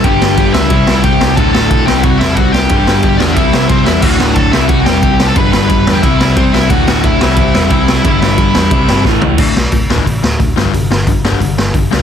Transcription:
0.04 picked electric bass G1, overdriven electric guitar G2 D3 G3, lead electric guitar G4 G5, kick, ride
0.21 picked electric bass G1, snare
0.37 picked electric bass G1, kick, ride
0.54 picked electric bass C#2, overdriven electric guitar G2 D3 G3, lead electric guitar E4 E5, snare
0.70 picked electric bass C2, overdriven electric guitar C3 G3 C4, kick, ride
0.87 picked electric bass C2, snare
1.03 picked electric bass C3, lead electric guitar G4 G5, kick, ride
1.20 picked electric bass C2, overdriven electric guitar C3 G3 C4, snare
1.36 picked electric bass D1, overdriven electric guitar D2 A2 D3, lead electric guitar A4 A5, kick, ride
1.52 picked electric bass D1, lead electric guitar A4 A5, snare
1.70 picked electric bass B1, kick, ride
1.86 picked electric bass C2, overdriven electric guitar C3 G3 C4, lead electric guitar G4 G5, snare
2.03 picked electric bass C2, lead electric guitar F#4 F#5, kick, ride
2.19 picked electric bass E1, lead electric guitar E4 E5, snare
2.35 picked electric bass C2, overdriven electric guitar C3 G3 C4, lead electric guitar F#4 F#5, kick, ride
2.52 lead electric guitar G4 G5, snare
2.69 picked electric bass G1, overdriven electric guitar G2 D3 G3, kick, ride
2.87 picked electric bass G1, snare
3.03 picked electric bass G1, kick, ride
3.17 picked electric bass E2, overdriven electric guitar D3 G3, lead electric guitar D4 D5, snare
3.22 overdriven electric guitar G2
3.33 picked electric bass C2, overdriven electric guitar C3, lead electric guitar E4 E5, kick, ride
3.38 overdriven electric guitar G3 C4
3.53 picked electric bass C2, snare
3.68 picked electric bass C3, lead electric guitar C4 C5, kick, ride
3.84 picked electric bass E2, overdriven electric guitar C3 G3 C4, lead electric guitar E4 E5, snare
4.01 picked electric bass D1, overdriven electric guitar D2 A2 D3, lead electric guitar F#4 F#5, kick, crash
4.19 picked electric bass D1, snare
4.34 picked electric bass D1, lead electric guitar A4 A5, kick, ride
4.52 picked electric bass C2, overdriven electric guitar C3 G3 C4, lead electric guitar E4 E5, snare
4.69 picked electric bass C2, lead electric guitar F#4 F#5, kick, ride
4.86 picked electric bass E1, lead electric guitar G4 G5, snare
5.02 picked electric bass C2, overdriven electric guitar C3 G3 C4, kick, ride
5.20 snare
5.27 lead electric guitar A4 A5
5.36 picked electric bass G1, overdriven electric guitar G2 D3 G3, lead electric guitar B4 B5, kick, ride
5.52 picked electric bass G1, lead electric guitar B4 B5, snare
5.69 picked electric bass G1, lead electric guitar B4 B5, kick, ride
5.86 picked electric bass E2, overdriven electric guitar G2 D3 G3, snare
5.93 lead electric guitar G4 G5
6.02 picked electric bass C2, overdriven electric guitar C3 G3, lead electric guitar E4 E5, kick, ride
6.06 overdriven electric guitar C4
6.20 picked electric bass C2, snare
6.36 picked electric bass C3, lead electric guitar C4 C5, kick, ride
6.53 picked electric bass C2, overdriven electric guitar C3 G3 C4, lead electric guitar E4 E5, snare
6.70 picked electric bass D1, overdriven electric guitar D2 A2 D3, lead electric guitar F#4 F#5, kick, ride
6.87 picked electric bass D1, lead electric guitar F#4 F#5, snare
7.04 picked electric bass D1, lead electric guitar E4 E5, kick, ride
7.20 picked electric bass C2, overdriven electric guitar C3 G3 C4, snare
7.36 picked electric bass C2, kick, ride
7.55 picked electric bass E1, snare
7.70 picked electric bass C2, overdriven electric guitar C3 G3 C4, kick, ride
7.88 snare
8.04 picked electric bass G1, overdriven electric guitar G2 D3 G3, kick, ride
8.22 picked electric bass G1, snare
8.38 picked electric bass G1, kick, ride
8.54 picked electric bass E2, overdriven electric guitar G2 D3 G3, snare
8.71 picked electric bass C2, overdriven electric guitar C3 G3 C4, kick, ride
8.89 picked electric bass G1, snare
9.05 picked electric bass A1, overdriven electric guitar A2 E3 A3, kick, snare
9.22 picked electric bass C#2, floor tom
9.38 picked electric bass D1, overdriven electric guitar D2 A2 D3, kick, crash
9.56 picked electric bass B1, overdriven electric guitar D2 A2, snare
9.72 picked electric bass D1, overdriven electric guitar D2 A2, kick, open hi-hat
9.90 picked electric bass D1, overdriven electric guitar D2 A2 D3, snare
9.98 kick
10.06 picked electric bass A1, overdriven electric guitar D2 A2, kick, open hi-hat
10.23 picked electric bass D1, overdriven electric guitar D2 A2, snare
10.39 picked electric bass D1, overdriven electric guitar D2 A2, kick, open hi-hat
10.56 picked electric bass G1, overdriven electric guitar G2 D3 G3, snare
10.65 kick
10.74 picked electric bass G1, overdriven electric guitar G2 D3, kick, open hi-hat
10.91 picked electric bass G1, overdriven electric guitar G2 D3, snare
11.07 picked electric bass G1, overdriven electric guitar G2 D3, kick, open hi-hat
11.24 picked electric bass G1, overdriven electric guitar G2 D3 G3, snare
11.32 kick
11.41 picked electric bass G1, overdriven electric guitar G2 D3, kick, open hi-hat
11.57 picked electric bass G1, overdriven electric guitar G2 D3, snare
11.74 picked electric bass G1, overdriven electric guitar G2 D3, kick, open hi-hat
11.90 picked electric bass C#2, overdriven electric guitar G2 D3 G3, snare

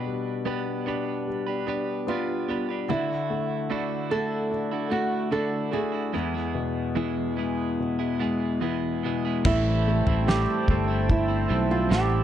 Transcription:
Already playing: grand piano B2, clean electric guitar D4 G4 B4
0.06 grand piano G3
0.45 clean electric guitar B3 D4 G4 B4, grand piano B3
0.86 clean electric guitar B3 D4 G4 B4, grand piano D4
1.27 grand piano G3
1.47 clean electric guitar D4 G4 B4
1.66 clean electric guitar B3 D4 G4 B4, grand piano D4
2.07 grand piano B3, clean electric guitar B3 D4 G4 B4, nylon-string guitar F4
2.48 grand piano G3, clean electric guitar B3 D4 G4 B4
2.69 clean electric guitar D4 G4 B4
2.88 clean electric guitar D3 A3 D4 E4 F#4, grand piano D3, nylon-string guitar E4
3.09 clean electric guitar D4 E4 F#4
3.30 grand piano A3
3.70 clean electric guitar D3 A3 D4 E4 F#4, grand piano D4
4.10 clean electric guitar A3 D4 E4 F#4, grand piano A3, nylon-string guitar A4
4.51 grand piano D4
4.71 clean electric guitar D4 E4 F#4
4.90 clean electric guitar A3 D4 E4 F#4, grand piano A3, nylon-string guitar F#4
5.31 clean electric guitar D3 A3 D4 E4 F#4, grand piano D4, nylon-string guitar A4
5.71 clean electric guitar A3 D4 E4 F#4, grand piano A3, nylon-string guitar G#4
5.92 clean electric guitar D4 E4 F#4
6.13 clean electric guitar E2 E3 G#3 B3 E4 G#4, grand piano E2
6.34 clean electric guitar G#3 B3 E4 G#4
6.55 grand piano B2
6.95 clean electric guitar E2 E3 G#3 B3 E4 G#4, grand piano E3
7.36 clean electric guitar G#3 B3 E4 G#4, grand piano G#3
7.80 grand piano B2
7.99 clean electric guitar G#3 B3 E4 G#4
8.19 clean electric guitar G#3 B3 E4 G#4, grand piano G#3
8.60 clean electric guitar E2 E3 G#3 B3 E4 G#4, grand piano E3
9.03 grand piano B2, clean electric guitar G#3 B3 E4 G#4
9.25 clean electric guitar G#3 B3 E4 G#4
9.45 fretless electric bass A1, clean electric guitar A2 E3 G3 C4 E4, grand piano A3, nylon-string guitar E4, analog synth pad C5 G5 A5 E6, kick, floor tom, crash
9.88 grand piano A3
10.06 fretless electric bass A1, clean electric guitar G3 C4 E4, floor tom
10.27 clean electric guitar A2 E3 G3 C4 E4, grand piano A3, nylon-string guitar G4, snare
10.68 fretless electric bass G1, clean electric guitar E3 G3 C4 E4, grand piano A3, kick, floor tom
10.87 clean electric guitar G3 C4 E4
11.09 grand piano A3, nylon-string guitar E4, kick, floor tom
11.28 clean electric guitar G3 C4 E4
11.49 fretless electric bass B1, clean electric guitar E3 G3 C4 E4
11.71 nylon-string guitar F4
11.89 fretless electric bass A1, clean electric guitar A2 E3 G3 C4 E4, nylon-string guitar G4, snare

